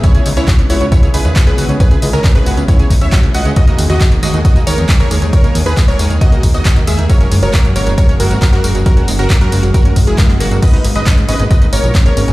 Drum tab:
CC |----------------|----------------|----------------|----------------|
RD |----------------|----------------|x-x-x-x-x-x-x-x-|x-x-x-x-x-x-x-x-|
HH |xxoxxxoxxxoxxxox|xxoxxxoxxxoxxxox|xxoxxxoxxxoxxxox|xxoxxxoxxxoxxxox|
TB |xxxxxxxxxxxxxxxx|xxxxxxxxxxxxxxxx|xxxxxxxxxxxxxxxx|xxxxxxxxxxxxxxxx|
CP |----x-------x---|----x-------x---|----x-------x---|----x-------x---|
BD |o---o---o---o---|o---o---o-o-o---|o---o---o---o---|o---o---o-o-o---|

CC |----------------|----------------|x---------------|
RD |x-x-x-x-x-x-x-x-|x-x-x-x-x-x-x-x-|x-x-x-x-x-x-x-x-|
HH |xxoxxxoxxxoxxxox|xxoxxxoxxxoxxxox|xxoxxxoxxxoxxxox|
TB |xxxxxxxxxxxxxxxx|xxxxxxxxxxxxxxxx|xxxxxxxxxxxxxxxx|
CP |----x-------x---|----x-------xx--|----x-------x---|
BD |o---o---o---o---|o---o---o-o-o---|o---o---o---o---|